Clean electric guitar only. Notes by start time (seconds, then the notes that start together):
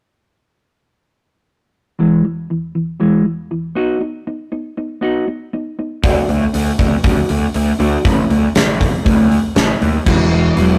1.99 E2 E3 G#3
2.25 E2 E3
2.50 E2 E3
2.75 E2 E3
3.00 E2 E3 G#3
3.25 E2
3.51 E2 E3
3.75 B3 D#4 F#4
4.01 B3 D#4
4.27 B3 D#4
4.52 B3 D#4
4.77 B3 D#4
5.01 B3 D#4 F#4
5.28 B3 D#4
5.53 B3 D#4
5.79 B3 D#4
6.04 D3 D4 F#4
6.29 D3 D4
6.53 D3 D4
6.79 D3 D4
7.03 D3 D4 F#4
7.29 D3 D4
7.54 D3 D4
7.79 D3 D4 F#4
8.05 A2 A3 C#4
8.29 A2 A3
8.55 A2 A3
8.80 A2 A3
9.05 A2 A3 C#4
9.55 A2 A3
9.80 A2 A3
10.05 E2 E3 G#3 B3 E4 F#4
10.30 G#3 B3 E4 F#4
10.55 G#3 B3 E4 F#4